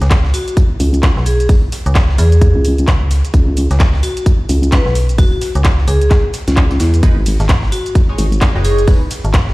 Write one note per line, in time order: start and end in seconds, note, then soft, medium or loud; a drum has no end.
0.01 0.32 C#2 loud
0.01 snare medium
0.01 closed hi-hat medium
0.01 shaker soft
0.11 kick loud
0.11 snare loud
0.11 clap loud
0.11 closed hi-hat medium
0.11 tambourine medium
0.11 shaker soft
0.25 snare medium
0.34 0.54 F#4 loud
0.34 open hi-hat loud
0.34 tambourine medium
0.34 shaker medium
0.48 closed hi-hat soft
0.48 closed hi-hat medium
0.48 shaker soft
0.57 kick loud
0.57 closed hi-hat medium
0.57 tambourine medium
0.57 shaker soft
0.80 1.15 C#2 loud
0.80 open hi-hat loud
0.80 tambourine medium
0.80 shaker medium
0.94 closed hi-hat medium
0.94 shaker soft
1.03 kick loud
1.03 snare loud
1.03 clap loud
1.03 closed hi-hat medium
1.03 tambourine medium
1.03 shaker soft
1.17 1.61 B1 loud
1.17 snare soft
1.26 1.46 G#4 medium
1.26 open hi-hat loud
1.26 tambourine medium
1.26 shaker medium
1.40 closed hi-hat medium
1.40 shaker soft
1.49 kick loud
1.49 closed hi-hat medium
1.49 open hi-hat medium
1.49 shaker soft
1.72 snare soft
1.72 open hi-hat loud
1.72 tambourine medium
1.72 shaker medium
1.86 2.17 C#2 loud
1.86 closed hi-hat medium
1.86 shaker soft
1.95 kick loud
1.95 snare loud
1.95 clap loud
1.95 closed hi-hat medium
1.95 tambourine medium
1.95 shaker soft
2.09 snare soft
2.18 2.53 E2 loud
2.18 2.65 G#4 loud
2.18 snare soft
2.18 open hi-hat loud
2.18 tambourine medium
2.18 shaker medium
2.32 closed hi-hat medium
2.32 shaker soft
2.41 kick loud
2.41 closed hi-hat medium
2.41 tambourine medium
2.41 shaker soft
2.55 2.86 C#2 loud
2.65 open hi-hat loud
2.65 tambourine medium
2.65 shaker medium
2.78 closed hi-hat medium
2.78 shaker soft
2.87 3.22 C#2 loud
2.87 kick loud
2.87 snare loud
2.87 clap loud
2.87 closed hi-hat medium
2.87 tambourine medium
2.87 shaker soft
3.11 snare medium
3.11 open hi-hat loud
3.11 tambourine medium
3.11 shaker medium
3.25 closed hi-hat medium
3.25 shaker soft
3.34 3.69 C#2 loud
3.34 kick loud
3.34 closed hi-hat medium
3.34 tambourine medium
3.34 shaker soft
3.57 open hi-hat loud
3.57 tambourine medium
3.57 shaker medium
3.71 4.02 C#2 loud
3.71 snare medium
3.71 closed hi-hat medium
3.71 shaker soft
3.80 kick loud
3.80 snare loud
3.80 clap loud
3.80 closed hi-hat medium
3.80 tambourine medium
3.80 shaker soft
3.94 snare medium
4.03 4.23 F#4 loud
4.03 open hi-hat loud
4.03 tambourine medium
4.03 shaker medium
4.17 closed hi-hat soft
4.17 closed hi-hat medium
4.17 shaker soft
4.26 kick loud
4.26 closed hi-hat medium
4.26 tambourine medium
4.26 shaker soft
4.49 4.84 C#2 loud
4.49 open hi-hat loud
4.49 tambourine medium
4.49 shaker medium
4.63 closed hi-hat medium
4.63 shaker soft
4.72 4.92 B4 medium
4.72 kick loud
4.72 snare loud
4.72 clap loud
4.72 closed hi-hat medium
4.72 tambourine medium
4.72 shaker soft
4.86 5.30 B1 medium
4.86 snare soft
4.95 open hi-hat loud
4.95 tambourine medium
4.95 shaker medium
5.09 closed hi-hat medium
5.09 shaker soft
5.18 5.27 F#4 medium
5.18 kick loud
5.18 closed hi-hat medium
5.18 open hi-hat medium
5.18 shaker soft
5.32 5.38 F#4 medium
5.41 snare soft
5.41 open hi-hat loud
5.41 tambourine medium
5.41 shaker medium
5.55 5.86 C#2 loud
5.55 closed hi-hat medium
5.55 shaker soft
5.64 kick loud
5.64 snare loud
5.64 clap loud
5.64 closed hi-hat medium
5.64 tambourine medium
5.64 shaker soft
5.78 snare soft
5.87 6.22 C#2 medium
5.87 5.96 G#4 medium
5.87 open hi-hat loud
5.87 tambourine medium
5.87 shaker medium
6.01 6.07 G#4 medium
6.01 closed hi-hat medium
6.01 shaker soft
6.11 kick loud
6.11 snare loud
6.11 clap medium
6.11 closed hi-hat medium
6.11 tambourine medium
6.11 shaker soft
6.34 snare soft
6.34 open hi-hat loud
6.34 tambourine medium
6.34 shaker medium
6.48 6.78 C#2 loud
6.48 snare loud
6.48 closed hi-hat medium
6.48 tambourine medium
6.48 shaker soft
6.57 kick loud
6.57 clap loud
6.57 closed hi-hat medium
6.57 shaker soft
6.71 snare soft
6.71 tambourine medium
6.80 7.02 E2 loud
6.80 snare loud
6.80 open hi-hat loud
6.80 tambourine medium
6.80 shaker medium
6.94 closed hi-hat medium
6.94 shaker soft
7.03 7.38 G#1 loud
7.03 7.16 G#3 medium
7.03 7.16 D#4 medium
7.03 7.16 B4 loud
7.03 kick loud
7.03 closed hi-hat medium
7.03 ride medium
7.03 tambourine medium
7.03 shaker soft
7.26 open hi-hat loud
7.26 ride medium
7.26 tambourine medium
7.26 shaker medium
7.40 7.71 G#1 loud
7.40 snare medium
7.40 closed hi-hat medium
7.40 shaker soft
7.49 kick loud
7.49 snare loud
7.49 clap loud
7.49 closed hi-hat medium
7.49 ride medium
7.49 tambourine medium
7.49 shaker soft
7.63 snare medium
7.72 7.92 F#4 medium
7.72 open hi-hat loud
7.72 ride medium
7.72 tambourine medium
7.72 shaker medium
7.86 closed hi-hat medium
7.86 closed hi-hat soft
7.86 shaker soft
7.95 kick loud
7.95 closed hi-hat medium
7.95 ride medium
7.95 tambourine medium
7.95 shaker soft
8.09 8.26 G#3 medium
8.09 8.26 D#4 medium
8.09 8.26 C#5 medium
8.18 8.53 G#1 loud
8.18 open hi-hat loud
8.18 ride medium
8.18 tambourine medium
8.18 shaker medium
8.32 closed hi-hat medium
8.32 shaker soft
8.41 kick loud
8.41 snare loud
8.41 clap loud
8.41 closed hi-hat medium
8.41 ride medium
8.41 tambourine medium
8.41 shaker soft
8.55 8.99 F#1 loud
8.55 8.63 G#3 loud
8.55 8.63 D#4 medium
8.55 8.63 B4 loud
8.55 snare soft
8.64 8.83 G#3 medium
8.64 8.83 D#4 medium
8.64 8.85 G#4 medium
8.64 8.83 C#5 loud
8.64 open hi-hat loud
8.64 ride medium
8.64 tambourine medium
8.64 shaker medium
8.78 closed hi-hat medium
8.78 shaker soft
8.88 9.01 G#3 loud
8.88 9.01 D#4 medium
8.88 9.01 B4 loud
8.88 kick loud
8.88 closed hi-hat medium
8.88 open hi-hat medium
8.88 ride medium
8.88 shaker soft
9.11 snare soft
9.11 open hi-hat loud
9.11 ride medium
9.11 tambourine medium
9.11 shaker medium
9.25 9.54 G#1 loud
9.25 closed hi-hat medium
9.25 shaker soft
9.34 kick loud
9.34 snare loud
9.34 clap loud
9.34 closed hi-hat medium
9.34 ride medium
9.34 tambourine medium
9.34 shaker soft
9.48 snare soft